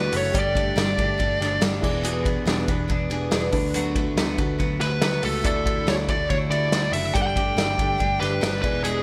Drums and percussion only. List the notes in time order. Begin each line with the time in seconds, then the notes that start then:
0.12 open hi-hat, ride
0.34 kick, hi-hat pedal, ride
0.55 kick, ride
0.78 snare, ride
0.98 kick, ride
1.20 kick, ride
1.42 snare, ride
1.62 snare, ride
1.83 kick, crash
2.05 hi-hat pedal, ride
2.25 kick, ride
2.47 snare, ride
2.68 kick, ride
2.89 kick, ride
3.11 ride
3.32 snare, ride
3.52 kick, open hi-hat, ride
3.74 hi-hat pedal, ride
3.95 kick, ride
4.17 snare, ride
4.38 kick, ride
4.60 kick, ride
4.81 snare, ride
5.02 snare, ride
5.23 open hi-hat, ride
5.44 kick, hi-hat pedal, ride
5.66 kick, ride
5.88 snare, ride
6.08 kick, ride
6.30 kick, ride
6.52 ride
6.72 snare, ride
6.93 open hi-hat, ride
7.15 kick, hi-hat pedal, ride
7.36 kick, ride
7.58 snare, ride
7.79 kick, ride
8.00 kick, ride
8.22 snare, ride
8.43 snare, ride
8.64 kick, crash
8.85 hi-hat pedal, ride